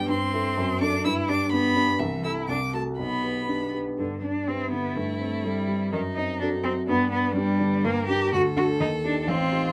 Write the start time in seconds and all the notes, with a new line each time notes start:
Already playing: G2 B3 D4 G4
0.09 G2 C4 C6
0.33 E4 A4
0.57 F#2
0.81 D4 A4 D6
1.04 G2 E4 E6
1.29 D4 G4 D6
1.52 B3 D4 G4 B5
1.76 D4 G4
1.99 C2 E3 E5
2.24 E4 A4 E6
2.48 C2 D4 D6
2.73 A3 F#4 A4 A5
2.99 B1 B3 B5
3.23 G4 B4
3.49 D4 G4 B4
3.74 G4 B4
3.98 G2 D3
4.23 D4
4.48 C4 E4 G4 B4
4.72 D3 B3
4.96 G2 A3
5.20 A3 C4
5.44 G3 E4 A4
5.68 G3
5.92 F#2 D#3 D#4
6.16 C4 D#4
6.40 D4 F#4 A4
6.64 F#3 C4
6.88 G2 B3 D4
7.12 B3
7.36 G3 D4 G4
7.60 D3
7.85 G2 A#3 A#4
8.08 D4 G4
8.32 D2 F#4 A4
8.56 D4 F#4 A4
8.80 D#2 D#4
9.04 D4 D#4 G4
9.22 D4
9.27 A1 C4 F4
9.51 D#4 G4